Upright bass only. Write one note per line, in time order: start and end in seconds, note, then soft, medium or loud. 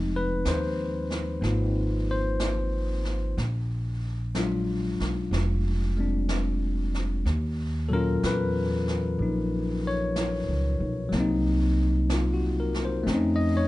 0.00 0.42 F1 medium
0.45 1.39 D#2 medium
1.42 3.33 G#1 medium
3.38 4.96 A#1 medium
5.00 5.30 B1 medium
5.31 7.21 F1 medium
7.25 8.19 D#2 medium
8.23 9.16 E2 medium
9.19 10.44 A#1 medium
10.48 10.78 C#2 medium
10.80 11.11 B1 medium
11.12 13.02 C2 medium
13.07 13.68 F2 medium